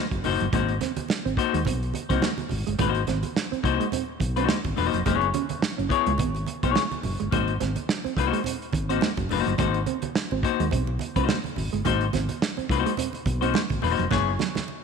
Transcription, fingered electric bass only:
0.12 0.23 F#1 medium
0.25 0.39 F#1 medium
0.41 0.52 G1 medium
0.53 0.78 G#1 loud
0.97 muted fingered electric bass stroke soft
1.26 1.36 G#1 medium
1.54 1.65 D#2 medium
1.67 1.91 B1 medium
2.10 2.21 C2 medium
2.51 2.65 G#1 medium
2.67 2.78 G1 medium
2.79 3.04 G#1 medium
3.08 3.22 G#1 loud
3.52 muted fingered electric bass stroke soft
3.64 3.78 C2 medium
4.21 4.46 B1 medium
4.65 4.76 G#1 medium
4.78 4.92 E1 medium
4.93 5.04 F1 medium
5.07 5.31 F#1 loud
5.51 muted fingered electric bass stroke soft
5.79 5.90 F#1 medium
6.07 6.18 C#2 medium
6.20 6.44 G#1 loud
6.63 6.74 B1 medium
7.05 7.18 F#1 medium
7.20 7.31 G1 medium
7.33 7.57 G#1 medium
7.61 7.75 G#1 medium
8.05 muted fingered electric bass stroke medium
8.17 8.31 C2 medium
8.73 8.98 G#1 medium
9.18 9.29 F#1 medium
9.31 9.45 F#1 medium
9.47 9.57 G1 medium
9.59 9.84 G#1 loud
10.03 muted fingered electric bass stroke soft
10.32 10.42 G#1 medium
10.60 10.71 D#2 medium
10.73 10.97 B1 medium
11.16 11.27 C2 medium
11.57 11.71 G#1 medium
11.73 11.84 G1 medium
11.86 12.10 G#1 medium
12.14 12.27 G#1 medium
12.58 muted fingered electric bass stroke medium
12.70 12.84 C2 loud
13.26 13.51 B1 loud
13.71 13.81 G#1 medium
13.83 13.97 E1 medium
13.99 14.10 F1 medium
14.12 14.36 F#1 loud
14.56 muted fingered electric bass stroke soft

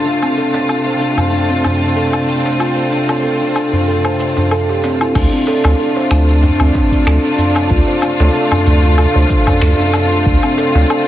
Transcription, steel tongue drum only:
0.06 0.15 D4 medium
0.23 0.36 C4 medium
0.38 0.53 A4 medium
0.54 0.67 D4 medium
0.69 0.85 A4 medium
0.86 0.94 C5 medium
1.01 1.16 D4 medium
1.18 1.31 D4 medium
1.33 1.42 D4 loud
1.50 1.63 C4 medium
1.65 1.74 D4 medium
1.82 1.95 D4 medium
1.96 2.13 A4 medium
2.13 2.27 D4 medium
2.28 2.43 D4 medium
2.45 2.59 D4 medium
2.60 2.76 F4 medium
2.77 2.90 C5 medium
2.92 3.02 D4 medium
3.09 3.23 A4 medium
3.24 3.40 A4 medium
3.41 3.54 D4 medium
3.56 3.71 D4 medium
3.73 3.87 D4 medium
3.88 4.03 A4 medium
4.05 4.18 C5 medium
4.20 4.36 C5 medium
4.37 4.50 D4 medium
4.52 4.68 A4 loud
4.69 4.82 G4 medium
4.84 5.00 C4 medium
5.01 5.15 E4 medium
5.16 5.25 D4 loud
5.33 5.46 C4 medium
5.48 5.63 A4 loud
5.65 5.78 D4 medium
5.80 5.96 A4 medium
5.97 6.05 C5 medium
6.11 6.27 D4 medium
6.29 6.42 D4 medium
6.43 6.53 D4 loud
6.61 6.74 C4 medium
6.75 6.85 D4 medium
6.92 7.05 D4 medium
7.07 7.23 A4 medium
7.24 7.37 D4 medium
7.39 7.54 D4 medium
7.56 7.70 D4 medium
7.71 7.87 F4 loud
7.88 8.01 C5 medium
8.03 8.12 D4 medium
8.20 8.34 A4 medium
8.35 8.51 A4 medium
8.52 8.65 D4 medium
8.67 8.82 D4 medium
8.84 8.98 D4 medium
8.98 9.14 A4 medium
9.16 9.29 C5 medium
9.30 9.40 D4 medium
9.47 9.61 A4 medium
9.62 9.78 A4 medium
9.79 9.93 D4 medium
9.94 10.10 D4 medium
10.11 10.25 D4 medium
10.26 10.36 D4 loud
10.43 10.56 C4 medium
10.58 10.73 A4 loud
10.75 10.88 D4 medium
10.90 11.06 A4 medium

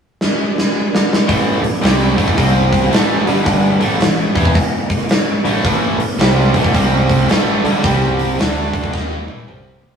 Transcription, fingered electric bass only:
1.29 1.61 A1 medium
1.64 muted fingered electric bass stroke soft
1.82 2.15 C2 medium
2.18 2.36 A1 medium
2.38 2.88 C2 medium
2.92 3.24 A1 medium
3.26 3.77 G1 medium
3.81 4.00 A1 medium
4.02 4.34 A1 medium
4.36 4.54 E2 medium
5.45 5.63 A1 medium
5.65 5.97 A1 medium
5.99 muted fingered electric bass stroke soft
6.19 6.52 C2 loud
6.54 6.73 A1 medium
6.74 7.25 C2 medium
7.29 7.61 A1 medium
7.64 7.83 G1 medium
7.84 8.35 C2 medium
8.39 8.90 D2 medium
8.94 9.25 D#2 medium
9.28 9.46 A1 medium
9.48 9.96 C2 medium

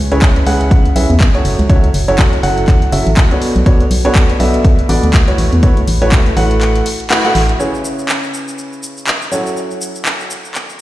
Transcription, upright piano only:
0.12 0.44 C#3 medium
0.12 0.44 C#4 medium
0.12 0.44 E4 medium
0.12 0.44 G#4 medium
0.12 0.44 B4 medium
0.12 0.44 C#5 loud
0.46 0.93 C#3 medium
0.46 0.93 C#4 medium
0.46 0.93 E4 medium
0.46 0.93 G#4 medium
0.46 0.93 B4 medium
0.46 0.93 F#5 loud
0.96 1.12 C#3 medium
0.96 1.12 C#4 medium
0.96 1.12 E4 medium
0.96 1.12 G#4 medium
0.96 1.12 B4 medium
0.96 1.12 E5 medium
1.35 1.67 F#3 medium
1.35 1.67 C#4 medium
1.35 1.67 E4 medium
1.35 1.67 F#4 medium
1.35 1.67 A4 medium
1.35 1.67 C#5 medium
1.69 1.86 F#3 medium
1.69 1.86 C#4 medium
1.69 1.86 E4 medium
1.69 1.86 F#4 medium
1.69 1.86 A4 medium
1.69 1.86 C#5 loud
2.08 2.41 F#3 medium
2.08 2.41 C#4 medium
2.08 2.41 E4 medium
2.08 2.41 F#4 medium
2.08 2.41 A4 medium
2.08 2.41 C#5 loud
2.43 2.90 F#3 medium
2.43 2.90 C#4 medium
2.43 2.90 E4 medium
2.43 2.90 F#4 medium
2.43 2.90 A4 medium
2.43 2.90 F#5 loud
2.92 3.09 F#3 medium
2.92 3.09 C#4 medium
2.92 3.09 E4 medium
2.92 3.09 F#4 medium
2.92 3.09 A4 medium
2.92 3.09 E5 medium
3.31 3.64 B2 medium
3.31 3.64 D4 medium
3.31 3.64 F#4 medium
3.31 3.64 A4 medium
3.31 3.64 B4 medium
3.31 3.64 C#5 medium
3.66 3.83 B2 medium
3.66 3.83 D4 medium
3.66 3.83 F#4 medium
3.66 3.83 A4 medium
3.66 3.83 B4 medium
3.66 3.83 C#5 loud
4.05 4.37 B2 medium
4.05 4.37 D4 medium
4.05 4.37 F#4 medium
4.05 4.37 A4 medium
4.05 4.37 B4 medium
4.05 4.37 C#5 loud
4.40 4.87 B2 medium
4.40 4.87 D4 medium
4.40 4.87 F#4 medium
4.40 4.87 A4 medium
4.40 4.87 B4 medium
4.40 4.87 E5 loud
4.89 5.06 B2 medium
4.89 5.06 D4 medium
4.89 5.06 F#4 medium
4.89 5.06 A4 medium
4.89 5.06 B4 medium
4.89 5.06 D5 medium
5.28 5.60 A3 medium
5.28 5.60 E4 medium
5.28 5.60 F#4 medium
5.28 5.60 A4 medium
5.28 5.60 B4 medium
5.28 5.60 C#5 medium
5.63 5.79 A3 medium
5.63 5.80 E4 medium
5.63 5.79 F#4 medium
5.63 5.79 A4 medium
5.63 5.80 B4 medium
5.63 5.80 C#5 loud
6.02 6.34 A3 medium
6.02 6.34 E4 medium
6.02 6.34 F#4 medium
6.02 6.34 A4 medium
6.02 6.34 B4 medium
6.02 6.34 C#5 loud
6.37 6.83 A3 medium
6.37 6.83 E4 medium
6.37 6.83 F#4 medium
6.37 6.83 A4 medium
6.37 6.83 B4 medium
6.37 6.83 F#5 loud
7.10 7.21 A3 loud
7.10 7.21 E4 medium
7.10 7.21 F#4 medium
7.10 7.21 A4 medium
7.10 7.21 B4 medium
7.10 7.21 F#5 loud
7.25 7.38 A3 loud
7.25 7.38 E4 medium
7.25 7.38 F#4 medium
7.25 7.38 A4 medium
7.25 7.38 B4 medium
7.25 7.38 F#5 loud
7.60 9.29 C#3 medium
7.60 9.29 C#4 medium
7.60 9.29 E4 medium
7.60 9.29 G#4 medium
7.60 9.29 B4 medium
7.60 9.29 C#5 medium
9.32 10.81 F#3 medium
9.32 10.81 C#4 medium
9.32 10.81 E4 medium
9.32 10.81 F#4 medium
9.32 10.81 A4 medium
9.32 10.81 C#5 medium

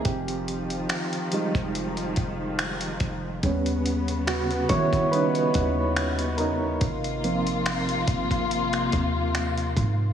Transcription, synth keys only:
0.05 0.87 C4 medium
0.05 0.86 G4 medium
1.33 1.90 G3 medium
1.33 1.90 G#3 soft
1.33 1.90 D#4 medium
3.44 5.12 G3 medium
3.44 4.28 B3 soft
3.44 5.12 C#4 medium
4.27 4.68 B3 medium
4.27 4.67 F#4 medium
4.69 5.10 E4 medium
4.69 5.13 C#5 medium
5.11 5.51 G3 soft
5.11 5.51 B3 soft
5.11 5.51 C#4 soft
5.11 6.36 D#4 medium
5.11 6.42 B4 loud
6.37 8.89 D#4 medium
6.37 8.88 A#4 medium
7.24 10.13 F3 medium
7.24 10.13 A#3 soft
7.24 10.13 C4 medium

